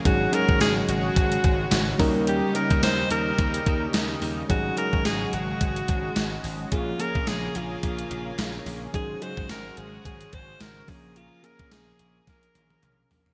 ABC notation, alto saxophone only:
X:1
M:4/4
L:1/8
Q:"Swing 16ths" 1/4=108
K:Abmix
V:1 name="Alto saxophone"
G B A G4 z | =G B c B3 z2 | G B A G4 z | F B A F4 z |
A c B A A c B A | F B A2 B3 z |]